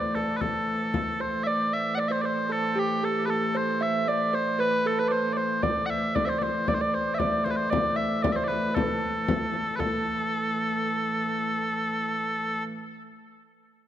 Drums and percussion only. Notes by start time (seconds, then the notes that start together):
0.15 frame drum
0.41 frame drum
0.94 frame drum
1.21 frame drum
5.63 frame drum
5.90 frame drum
6.16 frame drum
6.42 frame drum
6.68 frame drum
6.93 frame drum
7.20 frame drum
7.46 frame drum
7.73 frame drum
7.99 frame drum
8.24 frame drum
8.50 frame drum
8.76 frame drum
9.28 frame drum
9.54 frame drum
9.80 frame drum